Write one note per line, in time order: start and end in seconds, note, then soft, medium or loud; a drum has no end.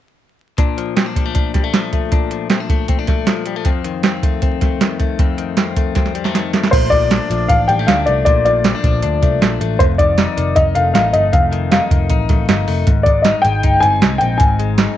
0.58 2.11 A#2 medium
0.58 0.96 D4 medium
0.58 kick medium
0.58 closed hi-hat medium
0.77 1.73 F3 soft
0.77 closed hi-hat medium
0.96 1.06 C4 medium
0.96 snare medium
0.96 closed hi-hat medium
1.06 1.33 D4 medium
1.16 1.26 G3 soft
1.16 kick medium
1.16 closed hi-hat medium
1.26 1.54 A3 soft
1.35 2.11 D4 medium
1.35 kick medium
1.35 closed hi-hat medium
1.54 1.64 G3 medium
1.54 kick medium
1.54 snare soft
1.54 closed hi-hat medium
1.64 1.92 A3 soft
1.73 2.31 F3 medium
1.73 snare medium
1.73 closed hi-hat medium
1.93 2.70 A3 medium
1.93 kick medium
1.93 closed hi-hat medium
2.12 3.65 A#2 medium
2.12 2.50 D4 medium
2.12 kick medium
2.12 closed hi-hat medium
2.31 3.27 F3 soft
2.31 closed hi-hat medium
2.50 2.60 C4 medium
2.50 snare medium
2.50 closed hi-hat medium
2.60 2.88 D4 soft
2.69 3.08 A3 medium
2.69 kick medium
2.69 closed hi-hat medium
2.88 2.99 C4 medium
2.88 kick medium
2.88 closed hi-hat medium
2.99 3.66 D4 soft
3.07 3.46 A3 medium
3.07 kick medium
3.07 snare soft
3.07 closed hi-hat medium
3.27 3.84 F3 medium
3.27 snare loud
3.27 closed hi-hat medium
3.46 3.56 G3 medium
3.46 closed hi-hat medium
3.56 3.69 A3 soft
3.65 5.18 F2 medium
3.65 4.03 C4 medium
3.65 kick medium
3.65 closed hi-hat medium
3.84 4.80 D#3 medium
3.84 closed hi-hat medium
4.03 4.41 C4 medium
4.03 snare loud
4.03 closed hi-hat medium
4.23 4.61 A3 medium
4.23 kick medium
4.23 closed hi-hat medium
4.42 5.19 C4 medium
4.42 kick medium
4.42 closed hi-hat medium
4.61 4.99 A3 medium
4.61 kick medium
4.61 snare soft
4.61 closed hi-hat medium
4.81 5.37 D#3 medium
4.81 snare loud
4.81 closed hi-hat medium
5.00 5.76 A3 medium
5.00 kick medium
5.00 closed hi-hat medium
5.19 6.73 F2 medium
5.19 5.56 C4 medium
5.19 kick loud
5.19 closed hi-hat medium
5.38 6.33 D#3 medium
5.38 closed hi-hat medium
5.57 5.94 C4 medium
5.57 snare medium
5.57 closed hi-hat medium
5.76 6.14 A3 medium
5.76 kick medium
5.76 closed hi-hat medium
5.95 6.76 C4 medium
5.95 kick medium
5.95 snare soft
5.95 closed hi-hat medium
6.06 snare soft
6.15 6.24 G3 medium
6.15 closed hi-hat medium
6.24 6.52 A3 soft
6.24 snare medium
6.34 6.77 D#3 medium
6.34 snare medium
6.34 closed hi-hat medium
6.53 7.69 A3 medium
6.53 snare medium
6.53 closed hi-hat medium
6.63 snare medium
6.71 7.18 A#1 loud
6.71 8.26 A#2 medium
6.71 6.90 C5 medium
6.71 kick loud
6.71 closed hi-hat medium
6.71 crash medium
6.90 7.30 F3 soft
6.90 7.50 D5 loud
6.90 kick medium
6.90 closed hi-hat medium
7.11 7.49 D4 medium
7.11 snare loud
7.11 closed hi-hat medium
7.30 7.46 A#1 medium
7.30 8.45 F3 medium
7.30 closed hi-hat medium
7.48 7.66 A1 medium
7.48 7.87 D4 medium
7.48 7.69 F5 medium
7.48 kick medium
7.48 closed hi-hat medium
7.68 7.85 A1 medium
7.68 7.79 G3 medium
7.68 7.88 G5 medium
7.68 closed hi-hat medium
7.79 8.06 A3 soft
7.87 8.05 D2 medium
7.87 8.64 D4 medium
7.87 8.05 F5 medium
7.87 snare loud
7.87 closed hi-hat loud
8.06 8.24 C2 medium
8.06 9.22 A3 medium
8.06 8.23 D5 medium
8.06 closed hi-hat medium
8.25 8.72 A#1 medium
8.25 9.80 A#2 medium
8.25 8.44 D5 medium
8.25 kick loud
8.25 closed hi-hat medium
8.45 8.84 F3 medium
8.45 9.56 D5 medium
8.45 closed hi-hat medium
8.64 8.75 C4 medium
8.64 snare loud
8.64 closed hi-hat medium
8.75 9.02 D4 medium
8.84 9.00 A#1 medium
8.84 9.99 F3 medium
8.84 kick medium
8.84 closed hi-hat medium
9.03 9.20 D2 medium
9.03 9.40 D4 medium
9.03 closed hi-hat medium
9.22 9.39 C2 medium
9.22 9.60 A3 medium
9.22 kick medium
9.22 closed hi-hat medium
9.41 9.58 A#1 medium
9.41 9.84 D4 medium
9.41 snare medium
9.41 closed hi-hat loud
9.61 9.77 A1 medium
9.61 10.02 A3 medium
9.61 closed hi-hat medium
9.79 10.25 F1 loud
9.79 11.31 F2 medium
9.79 9.84 C5 medium
9.79 kick loud
9.79 closed hi-hat loud
9.98 10.37 D#3 medium
9.98 10.58 D5 medium
9.98 kick medium
9.98 closed hi-hat medium
10.18 10.56 D#4 medium
10.18 snare medium
10.18 closed hi-hat medium
10.37 10.54 F1 medium
10.37 11.51 D#3 medium
10.37 closed hi-hat medium
10.56 10.73 F1 medium
10.56 10.94 D#4 medium
10.56 10.61 D#5 medium
10.56 kick medium
10.56 closed hi-hat medium
10.75 10.92 F1 medium
10.75 11.12 A3 medium
10.75 10.92 F5 medium
10.75 closed hi-hat medium
10.94 11.11 A1 medium
10.94 11.71 D#4 medium
10.94 11.12 F5 medium
10.94 snare loud
10.94 closed hi-hat loud
11.13 11.30 G1 medium
11.13 12.28 A3 medium
11.13 11.33 D#5 medium
11.13 closed hi-hat medium
11.33 11.79 F1 medium
11.33 12.87 F2 medium
11.33 11.70 F5 medium
11.33 kick loud
11.33 closed hi-hat medium
11.52 11.91 D#3 medium
11.52 closed hi-hat medium
11.71 12.09 D#4 medium
11.71 12.63 F5 medium
11.71 snare loud
11.71 closed hi-hat medium
11.91 12.07 F1 medium
11.91 13.06 D#3 medium
11.91 kick medium
11.91 closed hi-hat medium
12.09 12.26 A1 medium
12.09 12.48 D#4 medium
12.09 kick medium
12.09 closed hi-hat medium
12.29 12.46 A1 medium
12.29 12.67 A3 medium
12.29 kick medium
12.29 snare soft
12.29 closed hi-hat medium
12.49 12.65 G1 medium
12.49 13.26 D#4 medium
12.49 snare loud
12.49 closed hi-hat medium
12.68 12.84 F1 medium
12.68 12.91 A3 medium
12.68 open hi-hat medium
12.87 13.33 G#1 medium
12.87 14.39 G#2 medium
12.87 kick loud
12.87 closed hi-hat loud
13.03 13.43 G#3 medium
13.03 13.25 D5 medium
13.03 kick medium
13.03 closed hi-hat medium
13.22 13.63 D#4 medium
13.22 13.44 D#5 medium
13.22 snare medium
13.22 closed hi-hat medium
13.42 13.61 G#1 medium
13.42 14.58 G#3 medium
13.42 13.83 G5 loud
13.42 closed hi-hat medium
13.63 13.80 G1 medium
13.63 14.02 D#4 medium
13.63 kick medium
13.63 closed hi-hat medium
13.80 13.99 G1 medium
13.80 14.21 C4 medium
13.80 14.17 G#5 loud
13.80 closed hi-hat medium
14.02 14.19 C2 medium
14.02 14.78 D#4 medium
14.02 snare loud
14.02 closed hi-hat loud
14.18 14.38 A#1 medium
14.18 14.97 C4 medium
14.18 14.37 G5 medium
14.18 closed hi-hat medium
14.38 14.86 G#1 loud
14.38 14.97 G#2 medium
14.38 14.93 G#5 medium
14.38 kick loud
14.38 closed hi-hat medium
14.59 14.97 G#3 medium
14.59 closed hi-hat medium
14.78 14.97 D#4 medium
14.78 snare loud
14.78 closed hi-hat medium